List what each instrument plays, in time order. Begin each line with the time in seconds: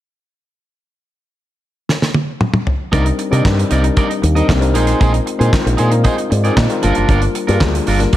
1.89 snare
2.02 snare
2.14 high tom
2.41 mid tom
2.54 mid tom
2.67 floor tom
2.92 fingered electric bass C2, tine electric piano G3 C4 D4 D#4 A#4, clean electric guitar D#4 A#4 D5, kick, closed hi-hat
3.06 muted clean electric guitar stroke, closed hi-hat
3.19 muted clean electric guitar stroke, closed hi-hat
3.31 fingered electric bass C3, tine electric piano G3 C4 D4 D#4 A#4, clean electric guitar D#4 A#4 D5, closed hi-hat
3.45 fingered electric bass G2, muted clean electric guitar stroke, kick, snare, clap
3.58 muted clean electric guitar stroke, closed hi-hat
3.71 fingered electric bass C2, clean electric guitar D#4 A#4 D5, closed hi-hat
3.82 tine electric piano G3 C4 D4 D#4 A#4, muted clean electric guitar stroke, closed hi-hat
3.97 clean electric guitar D#4 A#4 D5, kick, closed hi-hat
4.09 muted clean electric guitar stroke, closed hi-hat
4.22 fingered electric bass D#2, muted clean electric guitar stroke, closed hi-hat
4.35 tine electric piano G3 C4 D4 D#4 A#4, clean electric guitar D#4 A#4 D#5, closed hi-hat
4.48 fingered electric bass C2, muted clean electric guitar stroke, kick, snare, clap
4.60 tine electric piano G3 C4 D4 D#4 A#4, muted clean electric guitar stroke, closed hi-hat
4.73 fingered electric bass A#1, tine electric piano G#3 C4 D#4 F4 A#4, clean electric guitar D#4 G#4 C5, closed hi-hat
4.87 clean electric guitar D#4 G#4 C5, closed hi-hat
5.00 fingered electric bass A#1, clean electric guitar D#4 G#4 C5, kick, closed hi-hat
5.13 muted clean electric guitar stroke, closed hi-hat
5.26 muted clean electric guitar stroke, closed hi-hat
5.39 fingered electric bass A#2, tine electric piano G#3 C4 D4 F4 A#4, clean electric guitar D#4 G#4 C5, closed hi-hat
5.45 tine electric piano D#4
5.53 kick, snare, clap
5.65 fingered electric bass A#1, muted clean electric guitar stroke, closed hi-hat
5.77 fingered electric bass A#2, clean electric guitar D#4 G#4 C5, tine electric piano F5, closed hi-hat
5.91 tine electric piano G#3 C4 D#4 F4 A#4, muted clean electric guitar stroke, closed hi-hat
6.04 clean electric guitar D#4 G#4 C5, tine electric piano D#5, kick, closed hi-hat
6.17 muted clean electric guitar stroke, closed hi-hat
6.30 fingered electric bass G#2, tine electric piano D5, muted clean electric guitar stroke, closed hi-hat
6.44 tine electric piano G#3 C4 D#4 F4 A#4, clean electric guitar D#4 G#4 D5, closed hi-hat
6.56 fingered electric bass A#2, tine electric piano D#5, muted clean electric guitar stroke, kick, snare, clap
6.70 tine electric piano G#3 C4 D#4 F4 A#4, muted clean electric guitar stroke, closed hi-hat
6.82 fingered electric bass G1, tine electric piano G3 A#3 D4 F4 A#4 C5, clean electric guitar D4 F4 A#4, closed hi-hat
6.95 fingered electric bass F#1, clean electric guitar D4 F4 A#4, closed hi-hat
7.09 fingered electric bass G1, clean electric guitar D4 F4 A#4, kick, closed hi-hat
7.22 muted clean electric guitar stroke, closed hi-hat
7.35 muted clean electric guitar stroke, closed hi-hat
7.47 fingered electric bass G2, tine electric piano G3 A#3 D4 F4 G#4, clean electric guitar D4 F4 A#4, closed hi-hat
7.55 tine electric piano A#4
7.61 fingered electric bass D2, muted clean electric guitar stroke, kick, snare, clap
7.74 muted clean electric guitar stroke, closed hi-hat
7.87 fingered electric bass G1, clean electric guitar D4 F4 A#4, open hi-hat
7.99 tine electric piano G3 A#3 D4 F4 A#4, muted clean electric guitar stroke, snare, closed hi-hat
8.13 kick, closed hi-hat